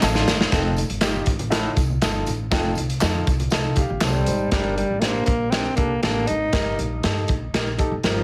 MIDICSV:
0, 0, Header, 1, 8, 480
1, 0, Start_track
1, 0, Tempo, 500835
1, 504, Time_signature, 4, 2, 24, 8
1, 7893, End_track
2, 0, Start_track
2, 0, Title_t, "String section"
2, 0, Program_c, 0, 48
2, 0, Note_on_c, 0, 77, 77
2, 0, Note_on_c, 0, 87, 100
2, 460, Note_off_c, 0, 87, 0
2, 463, Note_off_c, 0, 77, 0
2, 7893, End_track
3, 0, Start_track
3, 0, Title_t, "Grand piano"
3, 0, Program_c, 1, 0
3, 29, Note_on_c, 1, 63, 96
3, 30, Note_on_c, 1, 69, 106
3, 31, Note_on_c, 1, 65, 87
3, 277, Note_off_c, 1, 63, 0
3, 277, Note_off_c, 1, 69, 0
3, 278, Note_off_c, 1, 65, 0
3, 498, Note_on_c, 1, 63, 83
3, 500, Note_on_c, 1, 65, 75
3, 503, Note_on_c, 1, 69, 93
3, 751, Note_off_c, 1, 63, 0
3, 752, Note_off_c, 1, 65, 0
3, 753, Note_off_c, 1, 69, 0
3, 968, Note_on_c, 1, 63, 84
3, 974, Note_on_c, 1, 65, 79
3, 978, Note_on_c, 1, 67, 98
3, 1225, Note_off_c, 1, 63, 0
3, 1228, Note_off_c, 1, 65, 0
3, 1230, Note_off_c, 1, 67, 0
3, 1440, Note_on_c, 1, 65, 77
3, 1443, Note_on_c, 1, 63, 83
3, 1444, Note_on_c, 1, 69, 88
3, 1700, Note_off_c, 1, 65, 0
3, 1702, Note_off_c, 1, 63, 0
3, 1702, Note_off_c, 1, 69, 0
3, 1932, Note_on_c, 1, 63, 87
3, 1936, Note_on_c, 1, 65, 77
3, 1936, Note_on_c, 1, 69, 93
3, 2186, Note_off_c, 1, 63, 0
3, 2188, Note_off_c, 1, 65, 0
3, 2188, Note_off_c, 1, 69, 0
3, 2407, Note_on_c, 1, 65, 78
3, 2409, Note_on_c, 1, 69, 91
3, 2410, Note_on_c, 1, 63, 81
3, 2663, Note_off_c, 1, 65, 0
3, 2664, Note_off_c, 1, 63, 0
3, 2664, Note_off_c, 1, 69, 0
3, 2883, Note_on_c, 1, 63, 84
3, 2886, Note_on_c, 1, 65, 78
3, 2891, Note_on_c, 1, 69, 86
3, 3141, Note_off_c, 1, 63, 0
3, 3142, Note_off_c, 1, 65, 0
3, 3145, Note_off_c, 1, 69, 0
3, 3366, Note_on_c, 1, 65, 68
3, 3371, Note_on_c, 1, 63, 87
3, 3374, Note_on_c, 1, 69, 90
3, 3612, Note_off_c, 1, 65, 0
3, 3612, Note_on_c, 1, 77, 65
3, 3615, Note_off_c, 1, 63, 0
3, 3616, Note_off_c, 1, 69, 0
3, 3616, Note_on_c, 1, 67, 66
3, 3838, Note_off_c, 1, 77, 0
3, 3845, Note_off_c, 1, 67, 0
3, 3858, Note_on_c, 1, 69, 63
3, 3859, Note_on_c, 1, 81, 70
3, 3862, Note_on_c, 1, 60, 62
3, 4086, Note_off_c, 1, 69, 0
3, 4088, Note_off_c, 1, 60, 0
3, 4092, Note_on_c, 1, 72, 63
3, 4102, Note_on_c, 1, 63, 50
3, 4305, Note_off_c, 1, 81, 0
3, 4333, Note_on_c, 1, 62, 80
3, 4336, Note_on_c, 1, 43, 55
3, 4337, Note_on_c, 1, 70, 86
3, 4339, Note_on_c, 1, 67, 73
3, 4552, Note_off_c, 1, 72, 0
3, 4557, Note_off_c, 1, 63, 0
3, 4587, Note_off_c, 1, 62, 0
3, 4589, Note_off_c, 1, 70, 0
3, 4590, Note_off_c, 1, 67, 0
3, 4815, Note_on_c, 1, 62, 62
3, 4817, Note_on_c, 1, 67, 60
3, 4819, Note_on_c, 1, 72, 67
3, 5020, Note_off_c, 1, 43, 0
3, 5068, Note_off_c, 1, 62, 0
3, 5069, Note_off_c, 1, 67, 0
3, 5070, Note_off_c, 1, 72, 0
3, 5301, Note_on_c, 1, 62, 64
3, 5304, Note_on_c, 1, 67, 62
3, 5308, Note_on_c, 1, 70, 64
3, 5426, Note_off_c, 1, 62, 0
3, 5428, Note_off_c, 1, 67, 0
3, 5430, Note_off_c, 1, 70, 0
3, 5529, Note_on_c, 1, 62, 64
3, 5531, Note_on_c, 1, 69, 67
3, 5533, Note_on_c, 1, 67, 57
3, 5661, Note_off_c, 1, 62, 0
3, 5661, Note_off_c, 1, 69, 0
3, 5663, Note_off_c, 1, 67, 0
3, 5782, Note_on_c, 1, 62, 61
3, 5782, Note_on_c, 1, 67, 61
3, 5783, Note_on_c, 1, 69, 77
3, 6033, Note_off_c, 1, 67, 0
3, 6034, Note_off_c, 1, 62, 0
3, 6034, Note_off_c, 1, 69, 0
3, 6258, Note_on_c, 1, 63, 76
3, 6260, Note_on_c, 1, 70, 84
3, 6262, Note_on_c, 1, 43, 53
3, 6262, Note_on_c, 1, 67, 73
3, 6512, Note_off_c, 1, 63, 0
3, 6513, Note_off_c, 1, 70, 0
3, 6514, Note_off_c, 1, 67, 0
3, 6747, Note_on_c, 1, 67, 63
3, 6747, Note_on_c, 1, 69, 80
3, 6749, Note_on_c, 1, 63, 74
3, 6947, Note_off_c, 1, 43, 0
3, 6997, Note_off_c, 1, 67, 0
3, 6998, Note_off_c, 1, 69, 0
3, 6999, Note_off_c, 1, 63, 0
3, 7224, Note_on_c, 1, 63, 72
3, 7229, Note_on_c, 1, 67, 70
3, 7232, Note_on_c, 1, 70, 79
3, 7352, Note_off_c, 1, 63, 0
3, 7354, Note_off_c, 1, 67, 0
3, 7356, Note_off_c, 1, 70, 0
3, 7456, Note_on_c, 1, 63, 76
3, 7456, Note_on_c, 1, 67, 66
3, 7462, Note_on_c, 1, 69, 84
3, 7588, Note_off_c, 1, 63, 0
3, 7588, Note_off_c, 1, 67, 0
3, 7591, Note_off_c, 1, 69, 0
3, 7710, Note_on_c, 1, 63, 64
3, 7711, Note_on_c, 1, 70, 80
3, 7716, Note_on_c, 1, 67, 57
3, 7893, Note_off_c, 1, 63, 0
3, 7893, Note_off_c, 1, 67, 0
3, 7893, Note_off_c, 1, 70, 0
3, 7893, End_track
4, 0, Start_track
4, 0, Title_t, "Clean electric guitar"
4, 0, Program_c, 2, 27
4, 0, Note_on_c, 2, 60, 67
4, 0, Note_on_c, 2, 63, 85
4, 133, Note_off_c, 2, 63, 0
4, 136, Note_off_c, 2, 60, 0
4, 150, Note_on_c, 2, 65, 78
4, 157, Note_on_c, 2, 62, 59
4, 489, Note_off_c, 2, 65, 0
4, 492, Note_off_c, 2, 62, 0
4, 7893, End_track
5, 0, Start_track
5, 0, Title_t, "Alto saxophone"
5, 0, Program_c, 3, 65
5, 3880, Note_on_c, 3, 55, 72
5, 4317, Note_off_c, 3, 55, 0
5, 4332, Note_on_c, 3, 55, 76
5, 4559, Note_off_c, 3, 55, 0
5, 4569, Note_on_c, 3, 55, 71
5, 4798, Note_on_c, 3, 58, 76
5, 4812, Note_off_c, 3, 55, 0
5, 5031, Note_off_c, 3, 58, 0
5, 5036, Note_on_c, 3, 58, 81
5, 5275, Note_on_c, 3, 60, 77
5, 5290, Note_off_c, 3, 58, 0
5, 5516, Note_off_c, 3, 60, 0
5, 5522, Note_on_c, 3, 58, 80
5, 5755, Note_off_c, 3, 58, 0
5, 5774, Note_on_c, 3, 58, 88
5, 6015, Note_on_c, 3, 63, 91
5, 6029, Note_off_c, 3, 58, 0
5, 6500, Note_off_c, 3, 63, 0
5, 7719, Note_on_c, 3, 53, 73
5, 7893, Note_off_c, 3, 53, 0
5, 7893, End_track
6, 0, Start_track
6, 0, Title_t, "Baritone saxophone"
6, 0, Program_c, 4, 67
6, 501, Note_on_c, 4, 41, 77
6, 694, Note_off_c, 4, 41, 0
6, 1448, Note_on_c, 4, 45, 78
6, 1645, Note_off_c, 4, 45, 0
6, 2409, Note_on_c, 4, 41, 75
6, 2604, Note_off_c, 4, 41, 0
6, 7893, End_track
7, 0, Start_track
7, 0, Title_t, "Upright bass"
7, 0, Program_c, 5, 32
7, 28, Note_on_c, 5, 33, 98
7, 214, Note_off_c, 5, 33, 0
7, 269, Note_on_c, 5, 30, 79
7, 454, Note_off_c, 5, 30, 0
7, 504, Note_on_c, 5, 29, 107
7, 785, Note_off_c, 5, 29, 0
7, 863, Note_on_c, 5, 31, 79
7, 1144, Note_off_c, 5, 31, 0
7, 1219, Note_on_c, 5, 33, 76
7, 1595, Note_off_c, 5, 33, 0
7, 1696, Note_on_c, 5, 36, 90
7, 1885, Note_off_c, 5, 36, 0
7, 1936, Note_on_c, 5, 31, 96
7, 2125, Note_off_c, 5, 31, 0
7, 2169, Note_on_c, 5, 33, 82
7, 2360, Note_off_c, 5, 33, 0
7, 2408, Note_on_c, 5, 29, 100
7, 2600, Note_off_c, 5, 29, 0
7, 2656, Note_on_c, 5, 36, 70
7, 2844, Note_off_c, 5, 36, 0
7, 2896, Note_on_c, 5, 41, 96
7, 3085, Note_off_c, 5, 41, 0
7, 3138, Note_on_c, 5, 36, 85
7, 3326, Note_off_c, 5, 36, 0
7, 3372, Note_on_c, 5, 36, 83
7, 3656, Note_off_c, 5, 36, 0
7, 3740, Note_on_c, 5, 33, 80
7, 3833, Note_off_c, 5, 33, 0
7, 3855, Note_on_c, 5, 36, 89
7, 4044, Note_off_c, 5, 36, 0
7, 4095, Note_on_c, 5, 32, 84
7, 4284, Note_off_c, 5, 32, 0
7, 4330, Note_on_c, 5, 31, 83
7, 4615, Note_off_c, 5, 31, 0
7, 4698, Note_on_c, 5, 33, 74
7, 4981, Note_off_c, 5, 33, 0
7, 5053, Note_on_c, 5, 34, 71
7, 5433, Note_off_c, 5, 34, 0
7, 5537, Note_on_c, 5, 36, 77
7, 5727, Note_off_c, 5, 36, 0
7, 5789, Note_on_c, 5, 33, 85
7, 5975, Note_off_c, 5, 33, 0
7, 6034, Note_on_c, 5, 32, 70
7, 6218, Note_off_c, 5, 32, 0
7, 6260, Note_on_c, 5, 31, 84
7, 6450, Note_off_c, 5, 31, 0
7, 6507, Note_on_c, 5, 34, 70
7, 6695, Note_off_c, 5, 34, 0
7, 6750, Note_on_c, 5, 43, 82
7, 6937, Note_off_c, 5, 43, 0
7, 6990, Note_on_c, 5, 34, 75
7, 7177, Note_off_c, 5, 34, 0
7, 7229, Note_on_c, 5, 34, 84
7, 7511, Note_off_c, 5, 34, 0
7, 7585, Note_on_c, 5, 31, 82
7, 7681, Note_off_c, 5, 31, 0
7, 7702, Note_on_c, 5, 31, 84
7, 7893, Note_off_c, 5, 31, 0
7, 7893, End_track
8, 0, Start_track
8, 0, Title_t, "Drums"
8, 22, Note_on_c, 9, 38, 82
8, 25, Note_on_c, 9, 39, 90
8, 25, Note_on_c, 9, 54, 94
8, 117, Note_off_c, 9, 38, 0
8, 121, Note_off_c, 9, 39, 0
8, 121, Note_off_c, 9, 54, 0
8, 143, Note_on_c, 9, 62, 29
8, 143, Note_on_c, 9, 63, 47
8, 144, Note_on_c, 9, 38, 76
8, 239, Note_off_c, 9, 38, 0
8, 239, Note_off_c, 9, 62, 0
8, 239, Note_off_c, 9, 63, 0
8, 261, Note_on_c, 9, 63, 65
8, 266, Note_on_c, 9, 38, 102
8, 266, Note_on_c, 9, 54, 57
8, 357, Note_off_c, 9, 63, 0
8, 361, Note_off_c, 9, 38, 0
8, 362, Note_off_c, 9, 54, 0
8, 390, Note_on_c, 9, 38, 93
8, 486, Note_off_c, 9, 38, 0
8, 498, Note_on_c, 9, 64, 74
8, 499, Note_on_c, 9, 42, 80
8, 501, Note_on_c, 9, 36, 117
8, 502, Note_on_c, 9, 38, 108
8, 505, Note_on_c, 9, 54, 33
8, 594, Note_off_c, 9, 42, 0
8, 594, Note_off_c, 9, 64, 0
8, 597, Note_off_c, 9, 36, 0
8, 598, Note_off_c, 9, 38, 0
8, 601, Note_off_c, 9, 54, 0
8, 618, Note_on_c, 9, 62, 27
8, 714, Note_off_c, 9, 62, 0
8, 734, Note_on_c, 9, 54, 42
8, 737, Note_on_c, 9, 63, 61
8, 748, Note_on_c, 9, 42, 61
8, 829, Note_off_c, 9, 54, 0
8, 833, Note_off_c, 9, 63, 0
8, 843, Note_off_c, 9, 42, 0
8, 860, Note_on_c, 9, 42, 57
8, 956, Note_off_c, 9, 42, 0
8, 966, Note_on_c, 9, 42, 80
8, 970, Note_on_c, 9, 38, 106
8, 974, Note_on_c, 9, 39, 86
8, 974, Note_on_c, 9, 54, 89
8, 1062, Note_off_c, 9, 42, 0
8, 1066, Note_off_c, 9, 38, 0
8, 1070, Note_off_c, 9, 39, 0
8, 1070, Note_off_c, 9, 54, 0
8, 1102, Note_on_c, 9, 62, 28
8, 1102, Note_on_c, 9, 63, 62
8, 1198, Note_off_c, 9, 62, 0
8, 1198, Note_off_c, 9, 63, 0
8, 1206, Note_on_c, 9, 42, 60
8, 1217, Note_on_c, 9, 36, 78
8, 1302, Note_off_c, 9, 42, 0
8, 1312, Note_off_c, 9, 36, 0
8, 1334, Note_on_c, 9, 42, 45
8, 1335, Note_on_c, 9, 63, 64
8, 1335, Note_on_c, 9, 64, 62
8, 1430, Note_off_c, 9, 42, 0
8, 1431, Note_off_c, 9, 63, 0
8, 1431, Note_off_c, 9, 64, 0
8, 1452, Note_on_c, 9, 54, 52
8, 1456, Note_on_c, 9, 42, 94
8, 1458, Note_on_c, 9, 38, 102
8, 1460, Note_on_c, 9, 62, 28
8, 1548, Note_off_c, 9, 54, 0
8, 1552, Note_off_c, 9, 42, 0
8, 1554, Note_off_c, 9, 38, 0
8, 1555, Note_off_c, 9, 62, 0
8, 1576, Note_on_c, 9, 62, 33
8, 1672, Note_off_c, 9, 62, 0
8, 1691, Note_on_c, 9, 42, 60
8, 1695, Note_on_c, 9, 36, 88
8, 1701, Note_on_c, 9, 54, 46
8, 1787, Note_off_c, 9, 42, 0
8, 1791, Note_off_c, 9, 36, 0
8, 1797, Note_off_c, 9, 54, 0
8, 1822, Note_on_c, 9, 63, 68
8, 1918, Note_off_c, 9, 63, 0
8, 1932, Note_on_c, 9, 42, 61
8, 1938, Note_on_c, 9, 38, 94
8, 1942, Note_on_c, 9, 39, 78
8, 1942, Note_on_c, 9, 54, 80
8, 2028, Note_off_c, 9, 42, 0
8, 2034, Note_off_c, 9, 38, 0
8, 2038, Note_off_c, 9, 39, 0
8, 2038, Note_off_c, 9, 54, 0
8, 2049, Note_on_c, 9, 62, 30
8, 2049, Note_on_c, 9, 63, 44
8, 2145, Note_off_c, 9, 62, 0
8, 2145, Note_off_c, 9, 63, 0
8, 2171, Note_on_c, 9, 54, 58
8, 2175, Note_on_c, 9, 63, 64
8, 2176, Note_on_c, 9, 42, 67
8, 2267, Note_off_c, 9, 54, 0
8, 2271, Note_off_c, 9, 63, 0
8, 2272, Note_off_c, 9, 42, 0
8, 2409, Note_on_c, 9, 54, 34
8, 2411, Note_on_c, 9, 36, 122
8, 2412, Note_on_c, 9, 42, 88
8, 2414, Note_on_c, 9, 62, 33
8, 2414, Note_on_c, 9, 64, 73
8, 2416, Note_on_c, 9, 38, 108
8, 2505, Note_off_c, 9, 54, 0
8, 2507, Note_off_c, 9, 36, 0
8, 2508, Note_off_c, 9, 42, 0
8, 2510, Note_off_c, 9, 62, 0
8, 2510, Note_off_c, 9, 64, 0
8, 2512, Note_off_c, 9, 38, 0
8, 2639, Note_on_c, 9, 54, 42
8, 2650, Note_on_c, 9, 63, 53
8, 2661, Note_on_c, 9, 42, 62
8, 2735, Note_off_c, 9, 54, 0
8, 2746, Note_off_c, 9, 63, 0
8, 2756, Note_off_c, 9, 42, 0
8, 2775, Note_on_c, 9, 42, 52
8, 2871, Note_off_c, 9, 42, 0
8, 2885, Note_on_c, 9, 39, 92
8, 2885, Note_on_c, 9, 54, 95
8, 2891, Note_on_c, 9, 42, 74
8, 2896, Note_on_c, 9, 38, 106
8, 2981, Note_off_c, 9, 39, 0
8, 2981, Note_off_c, 9, 54, 0
8, 2987, Note_off_c, 9, 42, 0
8, 2991, Note_off_c, 9, 38, 0
8, 3013, Note_on_c, 9, 63, 64
8, 3108, Note_off_c, 9, 63, 0
8, 3133, Note_on_c, 9, 54, 35
8, 3134, Note_on_c, 9, 42, 59
8, 3137, Note_on_c, 9, 36, 86
8, 3229, Note_off_c, 9, 54, 0
8, 3230, Note_off_c, 9, 42, 0
8, 3232, Note_off_c, 9, 36, 0
8, 3255, Note_on_c, 9, 42, 44
8, 3256, Note_on_c, 9, 63, 63
8, 3256, Note_on_c, 9, 64, 60
8, 3351, Note_off_c, 9, 42, 0
8, 3352, Note_off_c, 9, 63, 0
8, 3352, Note_off_c, 9, 64, 0
8, 3358, Note_on_c, 9, 54, 54
8, 3372, Note_on_c, 9, 42, 97
8, 3374, Note_on_c, 9, 38, 104
8, 3454, Note_off_c, 9, 54, 0
8, 3468, Note_off_c, 9, 42, 0
8, 3470, Note_off_c, 9, 38, 0
8, 3601, Note_on_c, 9, 42, 55
8, 3610, Note_on_c, 9, 36, 84
8, 3610, Note_on_c, 9, 54, 44
8, 3697, Note_off_c, 9, 42, 0
8, 3705, Note_off_c, 9, 54, 0
8, 3706, Note_off_c, 9, 36, 0
8, 3737, Note_on_c, 9, 63, 68
8, 3832, Note_off_c, 9, 63, 0
8, 3837, Note_on_c, 9, 42, 64
8, 3843, Note_on_c, 9, 38, 96
8, 3844, Note_on_c, 9, 39, 84
8, 3844, Note_on_c, 9, 54, 84
8, 3859, Note_on_c, 9, 62, 28
8, 3933, Note_off_c, 9, 42, 0
8, 3939, Note_off_c, 9, 38, 0
8, 3940, Note_off_c, 9, 39, 0
8, 3940, Note_off_c, 9, 54, 0
8, 3955, Note_off_c, 9, 62, 0
8, 3984, Note_on_c, 9, 62, 28
8, 3984, Note_on_c, 9, 63, 45
8, 4079, Note_off_c, 9, 62, 0
8, 4079, Note_off_c, 9, 63, 0
8, 4086, Note_on_c, 9, 42, 65
8, 4089, Note_on_c, 9, 54, 55
8, 4101, Note_on_c, 9, 63, 61
8, 4182, Note_off_c, 9, 42, 0
8, 4185, Note_off_c, 9, 54, 0
8, 4197, Note_off_c, 9, 63, 0
8, 4326, Note_on_c, 9, 42, 73
8, 4330, Note_on_c, 9, 38, 95
8, 4332, Note_on_c, 9, 36, 107
8, 4422, Note_off_c, 9, 42, 0
8, 4426, Note_off_c, 9, 38, 0
8, 4428, Note_off_c, 9, 36, 0
8, 4577, Note_on_c, 9, 42, 54
8, 4673, Note_off_c, 9, 42, 0
8, 4807, Note_on_c, 9, 42, 74
8, 4811, Note_on_c, 9, 38, 84
8, 4903, Note_off_c, 9, 42, 0
8, 4907, Note_off_c, 9, 38, 0
8, 5042, Note_on_c, 9, 42, 55
8, 5056, Note_on_c, 9, 36, 76
8, 5138, Note_off_c, 9, 42, 0
8, 5152, Note_off_c, 9, 36, 0
8, 5293, Note_on_c, 9, 42, 82
8, 5295, Note_on_c, 9, 38, 98
8, 5388, Note_off_c, 9, 42, 0
8, 5391, Note_off_c, 9, 38, 0
8, 5528, Note_on_c, 9, 42, 57
8, 5538, Note_on_c, 9, 36, 68
8, 5623, Note_off_c, 9, 42, 0
8, 5633, Note_off_c, 9, 36, 0
8, 5776, Note_on_c, 9, 42, 56
8, 5782, Note_on_c, 9, 38, 89
8, 5872, Note_off_c, 9, 42, 0
8, 5878, Note_off_c, 9, 38, 0
8, 6012, Note_on_c, 9, 42, 70
8, 6108, Note_off_c, 9, 42, 0
8, 6255, Note_on_c, 9, 42, 72
8, 6259, Note_on_c, 9, 38, 106
8, 6261, Note_on_c, 9, 36, 95
8, 6351, Note_off_c, 9, 42, 0
8, 6354, Note_off_c, 9, 38, 0
8, 6356, Note_off_c, 9, 36, 0
8, 6505, Note_on_c, 9, 42, 56
8, 6601, Note_off_c, 9, 42, 0
8, 6741, Note_on_c, 9, 42, 69
8, 6746, Note_on_c, 9, 38, 95
8, 6837, Note_off_c, 9, 42, 0
8, 6841, Note_off_c, 9, 38, 0
8, 6977, Note_on_c, 9, 42, 58
8, 6988, Note_on_c, 9, 36, 76
8, 7073, Note_off_c, 9, 42, 0
8, 7084, Note_off_c, 9, 36, 0
8, 7228, Note_on_c, 9, 42, 87
8, 7230, Note_on_c, 9, 38, 107
8, 7324, Note_off_c, 9, 42, 0
8, 7326, Note_off_c, 9, 38, 0
8, 7461, Note_on_c, 9, 42, 53
8, 7468, Note_on_c, 9, 36, 76
8, 7557, Note_off_c, 9, 42, 0
8, 7564, Note_off_c, 9, 36, 0
8, 7700, Note_on_c, 9, 42, 58
8, 7706, Note_on_c, 9, 38, 86
8, 7796, Note_off_c, 9, 42, 0
8, 7802, Note_off_c, 9, 38, 0
8, 7893, End_track
0, 0, End_of_file